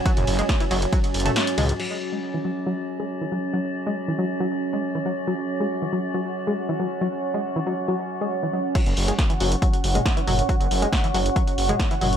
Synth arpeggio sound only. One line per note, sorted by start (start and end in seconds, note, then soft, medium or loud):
0.06 0.12 F#3 medium
0.39 0.45 G#3 medium
0.60 0.64 E3 medium
0.71 0.77 F#3 medium
0.92 0.99 F#3 medium
1.26 1.32 A3 medium
1.58 1.64 G#3 medium
1.80 1.86 F#3 medium
2.13 2.19 G#3 medium
2.34 2.38 E3 medium
2.45 2.51 F#3 medium
2.66 2.73 F#3 medium
3.00 3.06 G#3 medium
3.21 3.25 E3 medium
3.32 3.38 F#3 medium
3.54 3.60 F#3 medium
3.86 3.92 G#3 medium
4.08 4.12 E3 medium
4.19 4.25 F#3 medium
4.40 4.47 F#3 medium
4.73 4.79 G#3 medium
4.95 4.99 E3 medium
5.06 5.12 F#3 medium
5.27 5.34 F#3 medium
5.60 5.66 G#3 medium
5.82 5.86 E3 medium
5.93 5.99 F#3 medium
6.14 6.21 F#3 medium
6.47 6.53 G#3 medium
6.69 6.73 E3 medium
6.80 6.86 F#3 medium
7.01 7.08 F#3 medium
7.34 7.40 G#3 medium
7.56 7.60 E3 medium
7.66 7.73 F#3 medium
7.88 7.95 F#3 medium
8.21 8.27 G#3 medium
8.43 8.47 E3 medium
8.53 8.60 F#3 medium
8.75 8.82 F#3 medium
9.08 9.14 G#3 medium
9.30 9.34 E3 medium
9.40 9.47 F#3 medium
9.62 9.69 F#3 medium
9.95 10.01 G#3 medium
10.17 10.21 E3 medium
10.27 10.34 F#3 medium
10.49 10.56 F#3 medium
10.82 10.88 G#3 medium
11.04 11.07 E3 medium
11.14 11.21 F#3 medium
11.36 11.43 F#3 medium
11.69 11.75 G#3 medium
11.91 11.94 E3 medium
12.01 12.08 F#3 medium